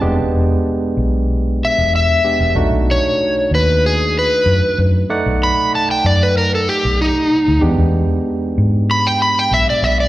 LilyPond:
<<
  \new Staff \with { instrumentName = "Electric slide guitar" } { \time 4/4 \key e \mixolydian \tempo 4 = 95 r2 r8 e''8 e''4 | r8 cis''4 b'8 gis'8 b'4 r8 | r8 b''8 a''16 g''16 d''16 b'16 ais'16 a'16 g'8 dis'4 | r2 b''16 g''16 b''16 g''16 e''16 d''16 e''16 d''16 | }
  \new Staff \with { instrumentName = "Tine electric piano" } { \time 4/4 \key e \mixolydian <gis b d' g'>2.~ <gis b d' g'>8 <gis b d' g'>8 | <a d' dis' fis'>1 | <a dis' d'' fis''>1 | <gis b d' g'>1 | }
  \new Staff \with { instrumentName = "Fingered electric bass" } { \clef bass \time 4/4 \key e \mixolydian e,,16 e,,8 r8. b,,4~ b,,16 e,,8 r8 e,,16 | b,,16 b,,8 r8. dis,4. fis,16 r16 fis,8 | r16 b,,8 r8. fis,4~ fis,16 b,,8 r8 d,16 | e,16 e,8 r8. gis,4. b,,16 r16 b,,8 | }
>>